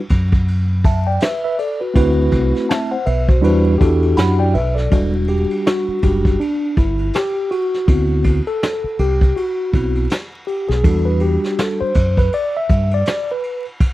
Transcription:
0.09 F#2, kick, ride
0.32 kick, ride
0.48 ride
0.84 E5 A5, kick, ride
1.07 D5 G5
1.20 B4 E5, snare, hi-hat pedal, ride
1.44 B4 E5
1.59 A4 D5, ride
1.80 F#4 B4
1.94 D2 A3 C4 E4 F#4 B4, kick, ride
2.31 C2, kick, ride
2.55 snare, ride
2.69 E5 A5, snare, hi-hat pedal, ride
2.91 C5 F#5
3.06 B1 B4 E5, ride
3.28 F#4 C5, kick, ride
3.41 E2 G3 D4 E4 F#4 B4, ride
3.78 E2 D4 E4 F#4 G4 A4, kick, ride
4.02 ride
4.17 F#2 F#5 B5, snare, hi-hat pedal, ride
4.39 D5 G5
4.54 B1 B4 E5, ride
4.75 A4 D5, snare, ride
4.91 E1 G3 D4 F#4, kick, ride
5.27 G4, ride
5.50 ride
5.66 F#4, snare, hi-hat pedal, ride
5.88 muted fingered electric bass stroke
6.02 F#1 G3 D4 F#4 G4, kick, ride
6.25 kick, ride
6.40 D4, ride
6.77 G1 E4, kick, ride
6.99 ride
7.13 G4, snare, hi-hat pedal, ride
7.51 F#4, ride
7.74 snare
7.88 D2 B3 C4 E4 F#4, kick, ride
8.24 kick, ride
8.46 A4, ride
8.63 snare, hi-hat pedal, ride
8.84 muted fingered electric bass stroke
8.99 C2 G4, ride
9.21 kick, ride
9.36 F#4, ride
9.73 B1 B3 C4 E4 F#4, kick, ride
9.95 ride
10.10 snare, hi-hat pedal, ride
10.47 G4, ride
10.69 B1 G#4, snare
10.83 E2 G3 D4 F#4 A4, kick, ride
11.05 B4
11.20 G4, ride
11.44 snare
11.58 A4, snare, hi-hat pedal, ride
11.81 C5, muted fingered electric bass stroke
11.94 F#2, kick, ride
12.17 B4, kick, ride
12.32 D5, ride
12.57 E5
12.69 G2, kick, ride
12.91 D5, ride
13.06 snare, hi-hat pedal, ride
13.31 B4
13.43 ride
13.65 ride
13.80 kick, ride

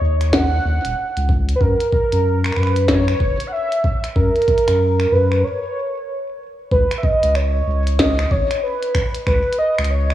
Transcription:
Already playing: C#5
0.01 D#2
0.21 finger snap, closed hi-hat
0.33 F#5, kick, snare
0.65 D#2
0.85 D#1, closed hi-hat
1.17 C#2, closed hi-hat
1.29 kick
1.49 closed hi-hat
1.55 B4
1.61 F#2 A#4, kick
1.81 closed hi-hat
1.93 kick
2.12 F#2, closed hi-hat
2.44 finger snap
2.52 finger snap
2.56 F#2 B4, finger snap
2.63 finger snap
2.67 finger snap
2.76 closed hi-hat
2.88 C#5, kick, snare
3.08 finger snap
3.20 F#1, kick
3.40 closed hi-hat
3.47 F#5
3.52 E5
3.72 closed hi-hat
3.84 kick
4.04 finger snap, closed hi-hat
4.16 F#2 A#4, kick
4.36 closed hi-hat
4.42 closed hi-hat
4.48 kick, closed hi-hat
4.58 closed hi-hat
4.68 F#2, finger snap, closed hi-hat
5.00 finger snap
5.12 F#2 B4
5.32 finger snap
5.44 C#5
6.71 C#2 B4, kick
6.91 finger snap, closed hi-hat
6.98 E5
7.03 D#5, kick
7.23 C#2, closed hi-hat
7.35 C#5, finger snap
7.67 C#2
7.87 closed hi-hat
7.99 D#5, kick, snare
8.19 finger snap
8.31 G#1 C#5, kick
8.51 finger snap, closed hi-hat
8.63 B4
8.83 closed hi-hat
8.95 finger snap, kick
9.15 closed hi-hat
9.27 C#2 B4, finger snap, kick
9.53 closed hi-hat
9.59 D#5
9.78 C#2, finger snap
9.84 closed hi-hat
9.91 C#5
10.10 finger snap

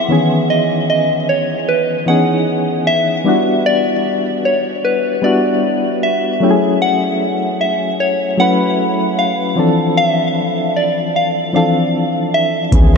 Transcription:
Already playing: F#3 B3 C4 E4 G#4 E5
0.08 D#3 E3 B3 C#4 G#4
0.50 D#5
0.90 D#5
1.29 C#5
1.69 B4
2.06 E3 B3 C#4 D#4 G#4 F#5
2.87 E5
3.24 G3 B3 D4 E4 F#4
3.66 D5
4.45 C#5
4.85 B4
5.22 G3 B3 D4 E4 F#4 D5
6.03 E5
6.40 F#3 A3 C#4 E4 G4
6.50 G#4
6.82 F#5
7.61 E5
8.00 C#5
8.37 F#3 A3 C#4 E4 B4 F#5
9.19 F5
9.55 E3 F3 C4 D4 A4
9.97 E5
10.76 D5
11.16 F5
11.53 E3 F3 C4 D4 A4 F5
12.34 E5
12.71 C#2 D#3 E3 B3 C#4 G#4, kick, closed hi-hat

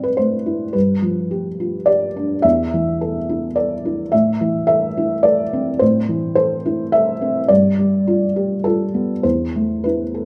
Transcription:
Already playing: A2 A3 C4 E4 D5
0.03 B4
0.17 A3 C5
0.46 E4
0.73 G2 B4
1.02 F3
1.31 G4
1.60 F4
1.86 G4 D5
2.16 D4
2.42 E2 E5
2.74 E3
3.01 A4
3.29 E4
3.56 A4 D5
3.85 E4
4.12 A2 E5
4.41 E3
4.67 A4 E5
4.97 E4
5.23 A4 D5
5.53 C4
5.79 A2 C5
6.09 E3
6.35 A4 C5
6.66 E4
6.92 A4 E5
7.21 C4
7.48 G2 D5
7.79 G3
8.07 F4
8.36 G4
8.64 F4 A4
8.94 B3
9.23 E2 C5
9.56 A3
9.84 E4 B4
10.14 A4

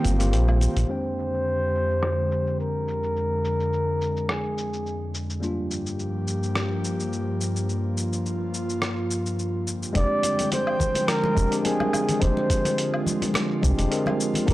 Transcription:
Already playing: D#3 A#3 C4 F4 G4
0.04 G1 A#3 C4 F4 G4, kick, closed hi-hat, high conga, cabasa
0.18 A#3 C4 F4 G4, closed hi-hat, muted conga, cabasa
0.31 A#1 A#3 C4 F4 C5, closed hi-hat, cabasa
0.48 high conga, low woodblock
0.61 closed hi-hat, muted conga, cabasa
0.76 A#1, closed hi-hat, low conga, cabasa
0.87 F2 D3 G#3 C4 D4 G4 C5, cabasa
0.91 G5
1.19 cabasa
1.34 cabasa
1.47 cabasa
1.75 cabasa
1.91 cabasa
2.03 cross-stick, cabasa
2.32 cabasa
2.47 cabasa
2.60 A#4, cabasa
2.88 cabasa
3.03 cabasa
3.17 cabasa
3.45 cabasa
3.60 cabasa
3.73 cabasa
4.02 cabasa
4.17 cabasa
4.29 G#4, cross-stick, cabasa
4.58 cabasa
4.73 cabasa
4.86 cabasa
5.15 cabasa
5.30 cabasa
5.40 G2 F3 G3 A#3 D4 F4 G4, cabasa
5.71 cabasa
5.87 cabasa
5.99 cabasa
6.28 cabasa
6.43 cabasa
6.55 cross-stick, cabasa
6.85 cabasa
7.00 cabasa
7.13 cabasa
7.41 cabasa
7.56 cabasa
7.69 F4, cabasa
7.98 cabasa
8.13 cabasa
8.26 cabasa
8.54 cabasa
8.70 cabasa
8.82 cross-stick, cabasa
9.11 cabasa
9.26 cabasa
9.39 cabasa
9.67 cabasa
9.83 cabasa
9.93 F1 D3 F3 G#3 C4 D4 G4 D5 G5, kick, closed hi-hat, high conga, cabasa
10.23 closed hi-hat, muted conga, cabasa
10.39 closed hi-hat, high conga, cabasa
10.52 C5, closed hi-hat, muted conga, cabasa
10.67 low woodblock
10.80 kick, low conga, cabasa
10.95 closed hi-hat, muted conga, high conga, cabasa
11.08 A#4, cross-stick, closed hi-hat, cabasa
11.24 muted conga
11.35 F1 G#3 C4 D4 G4, kick, high conga, cabasa
11.51 G#3 C4 D4 G4, closed hi-hat, cabasa
11.59 A#4
11.64 G#3 C4 D4 G#4 A#4, closed hi-hat, muted conga, cabasa
11.80 high conga, low woodblock
11.93 muted conga, cabasa, low woodblock
12.09 closed hi-hat, low conga, cabasa
12.19 F1 G#3 C4 D4 F4 C5, kick, closed hi-hat, high conga, cabasa
12.23 G4
12.37 muted conga
12.50 kick, closed hi-hat, cabasa
12.65 closed hi-hat, muted conga, high conga, cabasa
12.78 closed hi-hat, cabasa
12.94 low woodblock
13.06 muted conga, low conga, cabasa
13.22 closed hi-hat, high conga, cabasa
13.34 cross-stick, closed hi-hat, muted conga, cabasa
13.62 C2 G#3 C4 D4 G4, kick, high conga, cabasa
13.77 F1 G#3 C4 D4 G4, closed hi-hat, muted conga, cabasa
13.90 G#3 C4 D4 A#4, closed hi-hat, cabasa
14.06 muted conga, high conga, low woodblock
14.21 cabasa
14.34 closed hi-hat, low conga, cabasa
14.46 G1 G3 A#3 D4 F4 G4 A#4, kick, closed hi-hat, muted conga, high conga, cabasa

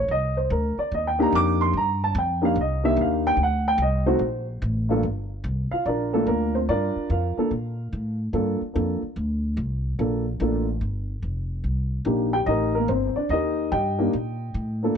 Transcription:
0.08 C2 D#5
0.37 C5
0.50 D2 A#4
0.77 D5, muted upright bass stroke
0.92 D#2 D#5
1.07 G5
1.19 A#3 D4 D#4 G4 A#5
1.32 F2 D6
1.61 C6
1.73 G2 A#5
2.04 A5
2.15 F2 G5
2.42 A#3 D4 D#4 G4 F5
2.55 C2
2.61 D#5
2.84 A#3 D4 D#4 G4 E5
2.96 D#2
3.01 F5
3.27 G5
3.37 D2
3.43 F#5
3.68 G5
3.78 C2
3.82 D#5
4.06 A3 C4 D#4 F#4 C5
4.19 A#1
4.62 A1
4.89 G2 A#3 D4 F4 A4
5.03 G1
5.44 C2
5.71 F4 F5, muted upright bass stroke
5.86 A#1 D4 F4 A#4 D5
6.13 A3 A#3 D4 F4 A4
6.27 D2 A#3 A#4
6.55 C4 C5
6.69 G2 D4 F4 A#4 D5
6.96 muted upright bass stroke
7.10 F2 F4 A#4 F5
7.37 A#3 D4 F4 A4, muted upright bass stroke
7.51 A#2
7.93 A2
8.33 G2 A#3 D4 F4 A4
8.61 muted upright bass stroke
8.74 F2 A#3 D4 F4 A4
9.02 muted upright bass stroke
9.16 D2
9.57 C2
9.99 A#1 A#3 D4 F4 A4
10.40 A1 A#3 D4 F4 A4
10.81 G1
11.22 F1
11.64 C2
12.05 A#1 A#3 D4 D#4 G4
12.33 G4 G5
12.46 A1 D#4 G4 A#4 D#5
12.75 A#3 A#4
12.88 G1 C4 C5
13.16 D4 D5, muted upright bass stroke
13.29 D#2 D#4 G4 A#4 D#5
13.72 G2 G4 D#5 G5
13.98 A#3 D4 D#4 G4
14.13 A#2
14.54 A2
14.83 A#3 D4 F4 A4

